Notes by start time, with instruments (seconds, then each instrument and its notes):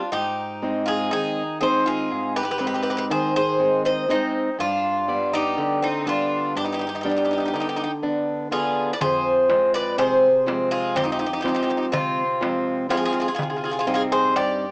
0.12 steel-string acoustic guitar G#2, bouzouki D#4 G4
0.62 steel-string acoustic guitar G#3 C4 D#4
0.86 bouzouki F4 G#4
1.11 steel-string acoustic guitar D#3, bouzouki D#4 G#4
1.61 steel-string acoustic guitar G#3 C4 D#4, bouzouki G#4 C5
1.86 bouzouki F4 G#4
2.11 steel-string acoustic guitar G#2
2.36 bouzouki G4 B4
2.43 bouzouki G4 B4
2.51 bouzouki G4 B4
2.58 steel-string acoustic guitar G#3 C4 D#4, bouzouki G4 B4
2.67 bouzouki G4 B4
2.74 bouzouki G4 B4
2.83 bouzouki G4 B4
2.90 bouzouki G4 B4
2.97 bouzouki G4 B4
3.10 steel-string acoustic guitar D#3, bouzouki G#4 C5
3.36 bouzouki G#4 C5
3.59 steel-string acoustic guitar G#3 C4 D#4
3.85 bouzouki C5 D#5
4.09 steel-string acoustic guitar G#3 C4 D#4, bouzouki C4 D#4
4.59 steel-string acoustic guitar G2, bouzouki D4 F4
5.08 steel-string acoustic guitar G3 B3 D5
5.33 bouzouki D#4 G4
5.58 steel-string acoustic guitar D3
5.82 bouzouki C4 D#4
6.06 steel-string acoustic guitar G3 B3 D4, bouzouki D4 F4
6.55 steel-string acoustic guitar G2, bouzouki D4 G4
6.64 bouzouki D#4 G4
6.72 bouzouki D#4 G4
6.79 bouzouki D#4 G4
6.87 bouzouki D#4 G4
6.95 bouzouki D#4 G4
7.01 steel-string acoustic guitar G3, bouzouki D#4 G4
7.05 steel-string acoustic guitar B3 D4
7.09 bouzouki D#4 G4
7.16 bouzouki D#4 G4
7.25 bouzouki D#4 G4
7.31 bouzouki D#4 G4
7.38 bouzouki D#4 G4
7.45 bouzouki D#4 G4
7.54 steel-string acoustic guitar D3, bouzouki D#4 G4
7.60 bouzouki D#4 G4
7.69 bouzouki D#4 G4
7.76 bouzouki D#4 G4
7.84 bouzouki D#4 G4
8.03 steel-string acoustic guitar B3 D4
8.51 steel-string acoustic guitar D3 B3 D4, bouzouki F4 G#4
8.93 bouzouki B4 D5
9.01 steel-string acoustic guitar F2, bouzouki G#4 C5, darbuka dum
9.49 steel-string acoustic guitar F3 G#3 C4, darbuka tek
9.74 bouzouki B4 D5, darbuka tek
9.98 steel-string acoustic guitar C3, bouzouki G#4 C5, darbuka tek
10.46 steel-string acoustic guitar F3 G#3 C4, darbuka tek
10.71 bouzouki F4 G#4
10.95 steel-string acoustic guitar F2, bouzouki C4 G4, darbuka tek, darbuka dum
11.04 bouzouki D#4 G4
11.12 bouzouki D#4 G4
11.19 bouzouki D#4 G4
11.26 bouzouki D#4 G4
11.33 bouzouki D#4 G4
11.41 steel-string acoustic guitar F3 G#3, bouzouki D#4 G4
11.45 steel-string acoustic guitar C4, bouzouki D#4, darbuka tek
11.49 bouzouki G4
11.55 bouzouki D#4 G4
11.63 bouzouki D#4 G4
11.70 bouzouki D#4 G4, darbuka tek
11.77 bouzouki D#4 G4
11.92 steel-string acoustic guitar C3, bouzouki C4 F4, darbuka dum
12.18 darbuka tek
12.41 steel-string acoustic guitar F3 G#3 C4, darbuka tek
12.67 darbuka tek
12.89 steel-string acoustic guitar F3 G#3 C4, bouzouki F4 G#4, darbuka tek
12.97 bouzouki F4 G#4
13.05 bouzouki F4 G#4
13.12 bouzouki F4 G#4
13.20 bouzouki F4 G#4
13.28 bouzouki F4 G#4
13.34 steel-string acoustic guitar C3, bouzouki F4 G#4
13.39 bouzouki F4, darbuka dum
13.43 bouzouki G#4
13.50 bouzouki F4 G#4
13.56 bouzouki F4 G#4
13.64 bouzouki F4 G#4
13.71 bouzouki F4 G#4
13.79 bouzouki F4 G#4
13.87 steel-string acoustic guitar G3 C4 D#4, bouzouki F4 G#4
13.94 bouzouki F4 G#4
14.12 bouzouki G#4 C5, darbuka tek
14.35 steel-string acoustic guitar G2, bouzouki G4 D5, darbuka tek